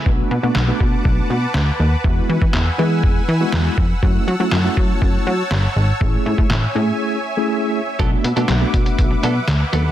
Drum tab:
HH |----------------|----------------|----------------|----------------|
CP |----x-------x---|----x-------x---|----x-------x---|----x-----------|
SD |----o-------o---|----o-------o---|----o-------o---|----o-----------|
BD |o-----o-o-------|o--o----o-----o-|o-----o-o-------|o--o------------|

HH |x-xxx-xxx-x-x-x-|
CP |----x-------x---|
SD |----o-------o---|
BD |o-----o-o-------|